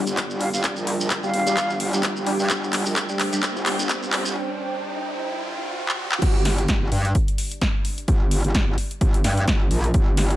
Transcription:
Already playing: analog synth pad G3 D4 D5 G5, riser
0.07 wobble bass G1, closed hi-hat, shekere
0.17 kick, clap, closed hi-hat, shekere
0.30 shekere
0.41 flute F5, open hi-hat
0.54 wobble bass G1, flute F5, shekere
0.64 kick, clap, closed hi-hat, shekere
0.76 wobble bass A#1, shekere
0.87 open hi-hat
1.01 shekere
1.10 kick, clap, closed hi-hat, shekere
1.23 wobble bass G1, synth stab G3 D4 G4, flute F5, shekere
1.34 wobble bass G1, open hi-hat
1.47 synth stab G3 D4 G4, closed hi-hat, shekere
1.57 wobble bass G1, kick, clap, closed hi-hat, shekere
1.70 shekere
1.80 open hi-hat
1.93 synth stab G3 D4 G4, closed hi-hat, shekere
2.03 wobble bass F1, kick, clap, closed hi-hat, shekere
2.17 wobble bass G1, shekere
2.26 synth stab G3 D4 G4, open hi-hat
2.39 wobble bass G2, shekere
2.50 wobble bass G1, analog synth pad C5, kick, clap, closed hi-hat, shekere
2.64 shekere
2.73 clap, open hi-hat
2.86 wobble bass A#1, shekere
2.96 kick, clap, closed hi-hat, shekere
3.09 synth stab G3 D4 G4, shekere
3.19 clap, open hi-hat
3.33 synth stab G3 D4 G4, closed hi-hat, shekere
3.43 kick, clap, closed hi-hat, shekere
3.56 wobble bass G1, shekere
3.66 wobble bass G1, synth stab G3 D4 G4, clap, open hi-hat
3.79 wobble bass G1, closed hi-hat, shekere
3.89 kick, clap, closed hi-hat, shekere
4.03 shekere
4.13 clap, open hi-hat
4.25 wobble bass G1, shekere
5.89 clap
6.12 clap
6.22 wobble bass G1, analog synth pad D4 G4 D5, kick, closed hi-hat, crash
6.45 snare, open hi-hat
6.58 closed hi-hat
6.68 wobble bass G1, kick, snare, closed hi-hat
6.82 wobble bass G1
6.92 wobble bass G2, open hi-hat
7.05 closed hi-hat
7.15 kick, closed hi-hat
7.28 closed hi-hat
7.38 open hi-hat
7.51 closed hi-hat
7.61 kick, snare, closed hi-hat
7.85 open hi-hat
7.98 closed hi-hat
8.08 wobble bass G1, kick, closed hi-hat
8.31 open hi-hat
8.44 wobble bass G1, closed hi-hat
8.55 kick, snare, closed hi-hat
8.68 wobble bass G1
8.78 open hi-hat
8.91 closed hi-hat
9.01 wobble bass G1, kick, closed hi-hat
9.14 closed hi-hat
9.24 wobble bass G2, snare, open hi-hat
9.37 closed hi-hat
9.48 wobble bass G1, kick, snare, closed hi-hat
9.71 wobble bass A#1, open hi-hat
9.84 closed hi-hat
9.94 wobble bass G1, kick, closed hi-hat
10.17 snare, open hi-hat
10.30 closed hi-hat

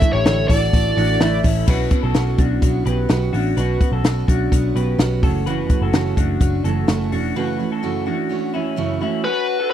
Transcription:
Already playing: clean electric guitar A3 E4, harp D4, lead electric guitar E5
0.01 steel-string acoustic guitar E3 A3 E4 A4, kick, hi-hat pedal, open hi-hat
0.13 picked electric bass A1, clean electric guitar E4 G4, lead electric guitar C#5
0.25 picked electric bass A1, steel-string acoustic guitar A2 D3 E3 A3 E4 A4, snare, hi-hat pedal, open hi-hat
0.48 picked electric bass A1, steel-string acoustic guitar E3 A3 E4 A4, clean electric guitar F#4 A4, lead electric guitar D5, kick, hi-hat pedal, open hi-hat
0.72 picked electric bass A1, steel-string acoustic guitar E3 A3 E4 A4, kick, hi-hat pedal, open hi-hat
0.96 picked electric bass A1, steel-string acoustic guitar E3 A3 E4 A4, clean electric guitar D4 F#4, hi-hat pedal, open hi-hat
1.20 picked electric bass A1, steel-string acoustic guitar A2 D3 E3 A3 E4 A4, clean electric guitar A3 E4, harp E4, snare, hi-hat pedal, open hi-hat
1.43 picked electric bass A1, steel-string acoustic guitar E3 A3 E4 A4, clean electric guitar C#4 E4, kick, hi-hat pedal, open hi-hat
1.66 picked electric bass B1, steel-string acoustic guitar B2 F#3 B3 C#4 F#4, clean electric guitar F#4 B4, kick, crash
1.90 steel-string acoustic guitar B3 C#4 F#4, kick, closed hi-hat
2.03 picked electric bass B1, clean electric guitar F#4 A4
2.14 picked electric bass B1, steel-string acoustic guitar B2 F#3 B3 C#4 F#4, snare, closed hi-hat
2.38 picked electric bass B1, steel-string acoustic guitar B3 C#4 F#4, clean electric guitar D4 F#4, kick, closed hi-hat
2.62 picked electric bass B1, steel-string acoustic guitar F#3 B3 C#4 F#4, kick, closed hi-hat
2.85 picked electric bass B1, steel-string acoustic guitar B3 C#4 F#4, clean electric guitar G4 B4, closed hi-hat
3.09 picked electric bass B1, steel-string acoustic guitar B2 F#3 B3 C#4 F#4, snare, closed hi-hat
3.33 picked electric bass A1, steel-string acoustic guitar B3 C#4 F#4, clean electric guitar D4 F#4, open hi-hat
3.57 picked electric bass B1, steel-string acoustic guitar B2 F#3 B3 C#4 F#4, clean electric guitar F#4 B4, closed hi-hat
3.81 steel-string acoustic guitar B3 C#4 F#4, kick, closed hi-hat
3.92 picked electric bass B1, clean electric guitar F#4 A4
4.04 picked electric bass B1, steel-string acoustic guitar B2 F#3 B3 C#4 F#4, snare, closed hi-hat
4.28 picked electric bass B1, steel-string acoustic guitar B3 C#4 F#4, clean electric guitar D4 F#4, kick, closed hi-hat
4.52 picked electric bass B1, steel-string acoustic guitar F#3 B3 C#4 F#4, kick, closed hi-hat
4.75 picked electric bass B1, steel-string acoustic guitar B3 C#4 F#4, clean electric guitar G4 B4, closed hi-hat
4.98 picked electric bass B1, steel-string acoustic guitar B2 F#3 B3 C#4 F#4, snare, closed hi-hat
5.23 picked electric bass F#1, steel-string acoustic guitar E3 A3 C#4 F#4, clean electric guitar F#4 A4, kick, open hi-hat
5.46 steel-string acoustic guitar F#2 C#3 E3 A3 C#4 F#4, clean electric guitar F#4 B4, closed hi-hat
5.69 steel-string acoustic guitar E3 A3 C#4 F#4, kick, closed hi-hat
5.82 picked electric bass F#1, clean electric guitar F#4 A4
5.93 picked electric bass F#1, steel-string acoustic guitar F#2 C#3 E3 A3 C#4 F#4, snare, closed hi-hat
6.16 picked electric bass F#1, steel-string acoustic guitar E3 A3 C#4 F#4, clean electric guitar D4 F#4, kick, closed hi-hat
6.40 picked electric bass F#1, steel-string acoustic guitar E3 A3 C#4 F#4, kick, closed hi-hat
6.64 picked electric bass F#1, steel-string acoustic guitar E3 A3 C#4 F#4, clean electric guitar F#4 A4, closed hi-hat
6.88 picked electric bass F#1, steel-string acoustic guitar F#2 C#3 E3 A3 C#4 F#4, snare, closed hi-hat
7.12 picked electric bass E1, steel-string acoustic guitar E3 A3 C#4 F#4, clean electric guitar D4 F#4, open hi-hat
7.36 steel-string acoustic guitar F#2 C#3 E3 A3 C#4 F#4, clean electric guitar F#4 B4
7.59 steel-string acoustic guitar E3 A3 C#4 F#4
7.72 clean electric guitar F#4 A4
7.83 steel-string acoustic guitar F#2 C#3 E3 A3 C#4 F#4
8.06 steel-string acoustic guitar E3 A3 C#4 F#4, clean electric guitar D4 F#4
8.29 steel-string acoustic guitar E3 A3 C#4 F#4
8.53 steel-string acoustic guitar E3 A3 C#4 F#4, clean electric guitar C#4 E4
8.76 steel-string acoustic guitar F#2 C#3 E3 A3 C#4 F#4
9.01 steel-string acoustic guitar E3 A3 C#4 F#4, clean electric guitar C#4 E4
9.24 clean electric guitar C#4 F#4, lead electric guitar B4
9.60 clean electric guitar F#4 A4

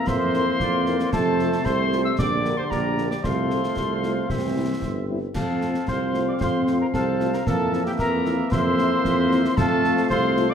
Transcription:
Already playing: trombone section E3 A#3
0.07 tuba F2, woodwind section A#4 E5, cornet C5, piccolo C6, concert bass drum, snare
0.34 french horn section C4 E4 A#4, snare
0.60 tuba F2, woodwind section D5, concert bass drum, snare
0.86 french horn section C4 E4 A#4, snare
0.99 snare
1.12 tuba F2, trombone section C3 A3, woodwind section A4 C5, cornet A4, piccolo A5, concert bass drum, snare, crash
1.39 french horn section C4 F4 A4, snare
1.52 snare
1.64 tuba C2, woodwind section A4 C5, cornet C5, piccolo C6, concert bass drum, snare
1.92 french horn section C4 F4 A4, snare
2.05 cornet E5, piccolo E6
2.18 tuba A#1, trombone section D3 G3, woodwind section G4 D5, cornet D5, piccolo D6, concert bass drum, snare
2.45 french horn section A#3 G4 A#4, snare
2.57 cornet C5, piccolo C6
2.70 tuba A#1, woodwind section G4 D5, cornet A#4, piccolo A#5, concert bass drum, snare
2.98 french horn section A#3 G4 A#4, snare
3.10 cornet D5, piccolo D6, snare
3.23 tuba C2, trombone section F3 A3, woodwind section A4 F5, cornet C5, piccolo C6, concert bass drum, snare
3.50 french horn section A3 C4 F4, snare
3.64 snare
3.76 tuba C2, concert bass drum, snare
4.02 french horn section A3 C4 F4, snare
4.29 tuba C2, trombone section E3 C4, woodwind section C5 E5, concert bass drum, snare
4.55 french horn section G3 C4 E4
4.82 tuba G1, concert bass drum, snare
5.08 french horn section G3 C4 E4
5.35 tuba F2, trombone section F3 C4, cornet A4, woodwind section C5 F5, piccolo A5, concert bass drum, snare, crash
5.61 french horn section A3 C4 F4, snare
5.74 snare
5.88 tuba C2, cornet C5, woodwind section C5 F5, piccolo C6, concert bass drum, snare
6.14 french horn section A3 C4 F4, snare
6.28 cornet D5, piccolo D6
6.40 tuba F2, cornet C5, woodwind section C5 F5, piccolo C6, concert bass drum, snare
6.67 french horn section A3 C4 F4, snare
6.81 cornet A#4, piccolo A#5
6.93 tuba C2, cornet A4, woodwind section C5 F5, piccolo A5, concert bass drum, snare
7.20 french horn section A3 C4 F4, snare
7.33 cornet A#4, piccolo A#5, snare
7.46 tuba F2, trombone section E3 A#3, cornet A4, woodwind section A#4 E5, piccolo A5, concert bass drum, snare
7.72 french horn section A#3 C4 E4, snare
7.86 cornet G4, piccolo G5, snare
7.98 tuba F2, woodwind section A#4 E5, cornet A#4, piccolo A#5, concert bass drum, snare
8.26 french horn section A#3 C4 E4, snare
8.51 tuba F2, woodwind section A#4 E5, cornet C5, piccolo C6, concert bass drum, snare
8.78 french horn section A#3 C4 E4, snare
9.04 tuba F2, concert bass drum, snare
9.31 french horn section A#3 C4 E4, snare
9.45 snare
9.57 tuba F2, trombone section F3 A3, cornet A4, woodwind section A4 F5, piccolo A5, concert bass drum, snare, crash
9.84 french horn section A3 C4 F4, snare
9.97 snare
10.09 tuba C2, woodwind section A4 F5, cornet C5, piccolo C6, concert bass drum, snare
10.36 french horn section A3 C4 F4, snare
10.50 cornet D5, piccolo D6

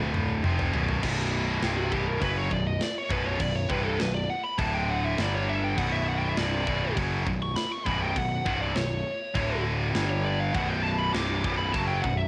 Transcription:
Already playing: picked electric bass D1, distorted electric guitar D2 A2 D3
0.00 mid tom
0.15 mid tom
0.44 picked electric bass F1, distorted electric guitar F2 C3 F3, mid tom
0.59 floor tom
0.73 picked electric bass B0, distorted electric guitar B1 F#2 B2, floor tom
0.88 floor tom
1.02 picked electric bass B0, distorted electric guitar B1 F#2 B2, kick, crash
1.62 picked electric bass C1, distorted electric guitar C2 G2 C3, snare, crash
1.77 lead electric guitar F#4
1.91 picked electric bass B0, distorted electric guitar B1 F#2 B2, lead electric guitar G4, kick
2.07 lead electric guitar A#4
2.20 picked electric bass F#1, distorted electric guitar F#2 C#3 F#3, lead electric guitar B4, kick, crash
2.38 lead electric guitar C#5
2.50 picked electric bass B0, distorted electric guitar B1 F#2, lead electric guitar D5, kick
2.67 lead electric guitar D#5
2.81 lead electric guitar D5, snare, crash
2.98 lead electric guitar C#5
3.09 picked electric bass B0, distorted electric guitar B1 F#2 B2, lead electric guitar B4, kick
3.26 lead electric guitar C#5
3.39 picked electric bass B0, distorted electric guitar B1 F#2, lead electric guitar D5, kick, crash
3.55 lead electric guitar C#5
3.69 picked electric bass C1, distorted electric guitar C2 G2 C3, lead electric guitar B4, kick
3.85 lead electric guitar A4
3.99 picked electric bass B0, distorted electric guitar B1 F#2, lead electric guitar B4, snare, crash
4.15 lead electric guitar D5
4.30 lead electric guitar F#5
4.43 lead electric guitar B5
4.58 picked electric bass D1, distorted electric guitar D2 A2 D3, lead electric guitar A5, kick, crash
4.74 lead electric guitar G5
4.90 lead electric guitar F#5
5.05 lead electric guitar E5
5.18 picked electric bass G1, distorted electric guitar G2 D3 G3, lead electric guitar D5, snare, crash
5.35 lead electric guitar C#5
5.49 lead electric guitar E5
5.64 lead electric guitar G5
5.77 picked electric bass B0, distorted electric guitar B1 F#2 B2, lead electric guitar F#5, kick, crash
5.92 lead electric guitar E5
6.08 lead electric guitar F#5
6.18 lead electric guitar G5
6.29 lead electric guitar E5
6.37 picked electric bass C1, distorted electric guitar C2 G2 C3, lead electric guitar D5, snare, crash
6.67 picked electric bass B0, distorted electric guitar B1 F#2 B2, kick
6.96 picked electric bass F#1, distorted electric guitar F#2 C#3 F#3, kick, crash
7.26 picked electric bass B0, distorted electric guitar B1 F#2, kick
7.42 lead electric guitar C#6
7.56 lead electric guitar B5, snare, crash
7.72 lead electric guitar C#6
7.86 picked electric bass B0, distorted electric guitar B1 F#2 B2, lead electric guitar B5, kick
8.02 lead electric guitar G5
8.16 picked electric bass B0, distorted electric guitar B1 F#2, lead electric guitar F#5, kick, crash
8.46 picked electric bass C1, distorted electric guitar C2 G2 C3, kick
8.62 lead electric guitar D5
8.75 picked electric bass B0, distorted electric guitar B1 F#2, lead electric guitar C#5, snare, crash
9.35 picked electric bass D1, distorted electric guitar D2 A2 D3, kick, crash
9.94 picked electric bass G1, distorted electric guitar G2 D3 G3, snare, crash
10.10 lead electric guitar C#5
10.24 lead electric guitar D5
10.39 lead electric guitar F5
10.54 picked electric bass B0, distorted electric guitar B1 F#2 B2, lead electric guitar F#5, kick, crash
10.69 lead electric guitar G5
10.83 lead electric guitar A5
10.98 lead electric guitar B5
11.13 picked electric bass C1, distorted electric guitar C2 G2 C3, lead electric guitar D6, snare, crash
11.44 picked electric bass B0, distorted electric guitar B1 F#2 B2, kick
11.58 lead electric guitar B5
11.72 picked electric bass F#1, distorted electric guitar F#2 C#3 F#3, lead electric guitar A5, kick, crash
11.88 lead electric guitar G5
12.02 picked electric bass B0, distorted electric guitar B1 F#2, lead electric guitar F#5, kick
12.17 lead electric guitar E5

